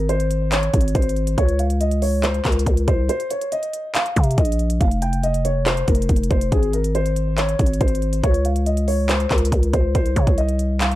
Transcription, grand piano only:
0.09 0.50 C5 medium
0.52 0.92 C#5 medium
0.95 1.35 C5 medium
1.38 1.58 C#5 medium
1.59 1.79 F5 medium
1.81 2.00 D#5 medium
2.02 2.22 C#5 medium
2.24 2.43 C5 medium
2.45 2.85 A#4 medium
2.88 3.08 C5 medium
3.09 3.29 C5 medium
3.31 3.50 C#5 medium
3.52 3.92 D#5 medium
3.95 4.35 F5 medium
4.38 4.78 D#5 medium
4.81 5.00 F5 medium
5.02 5.22 G5 medium
5.23 5.43 D#5 medium
5.45 5.65 C#5 medium
5.66 5.86 C5 medium
5.88 6.28 A#4 medium
6.31 6.50 C5 medium
6.52 6.72 G#4 medium
6.74 6.93 A#4 medium
6.95 7.35 C5 medium
7.38 7.78 C#5 medium
7.81 8.21 C5 medium
8.24 8.43 C#5 medium
8.45 8.65 F5 medium
8.66 8.86 D#5 medium
8.88 9.08 C#5 medium
9.09 9.29 C5 medium
9.31 9.71 A#4 medium
9.74 9.93 C5 medium
9.95 10.15 C5 medium
10.16 10.36 C#5 medium
10.38 10.78 D#5 medium
10.81 10.95 F5 medium

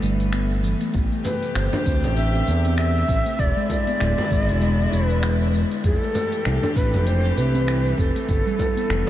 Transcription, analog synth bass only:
0.02 0.74 G1 medium
0.94 1.08 A1 medium
1.55 1.69 G1 medium
1.86 2.06 D2 medium
2.04 2.42 A1 medium
2.48 3.04 E2 medium
3.08 3.22 A1 medium
3.39 3.52 E1 medium
4.00 4.14 D1 medium
4.31 4.50 G#1 medium
4.48 4.87 E1 loud
4.92 5.64 E1 medium
5.84 5.97 F1 medium
6.46 6.59 C2 loud
6.76 6.95 A1 medium
6.93 7.32 F1 loud
7.37 7.93 C2 medium
7.98 8.11 F1 medium
8.28 8.42 G1 medium
8.90 9.03 F1 medium

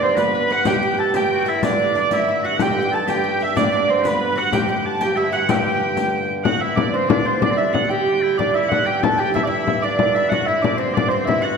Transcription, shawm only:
0.01 0.17 C4 medium
0.16 0.33 B4 medium
0.34 0.64 B4 medium
0.66 0.81 G4 medium
0.82 0.97 G4 medium
0.99 1.16 A4 medium
1.15 1.31 G4 medium
1.33 1.50 F#4 medium
1.49 1.64 E4 medium
1.63 1.95 D4 medium
1.96 2.03 D4 medium
2.12 2.41 E4 medium
2.43 2.61 F#4 medium
2.59 2.74 G4 medium
2.75 2.90 G4 medium
2.91 3.08 A4 medium
3.07 3.55 G4 medium
3.56 3.71 D4 medium
3.71 3.90 D4 medium
3.88 4.05 C4 medium
4.03 4.35 B4 medium
4.36 4.51 F#4 medium
4.51 4.67 G4 medium
4.68 4.84 G4 medium
5.01 5.17 G4 medium
5.16 5.49 E4 medium
5.49 6.26 G4 medium
6.46 6.61 F#4 medium
6.62 6.88 E4 medium
6.92 6.97 D4 medium
6.96 7.11 C4 medium
7.11 7.41 D4 medium
7.42 7.52 D4 medium
7.50 7.59 C4 medium
7.58 7.91 D4 medium
7.91 8.25 G4 medium
8.23 8.39 E4 medium
8.39 8.57 D4 medium
8.55 8.88 E4 medium
8.86 9.04 G4 medium
9.03 9.21 A4 medium
9.20 9.34 G4 medium
9.35 9.41 E4 medium
9.49 9.86 E4 medium
9.85 10.33 D4 medium
10.32 10.49 F#4 medium
10.47 10.81 E4 medium
10.80 10.97 C4 medium
10.96 11.14 D4 medium
11.12 11.30 C4 medium
11.28 11.45 E4 medium
11.44 11.57 F#4 medium

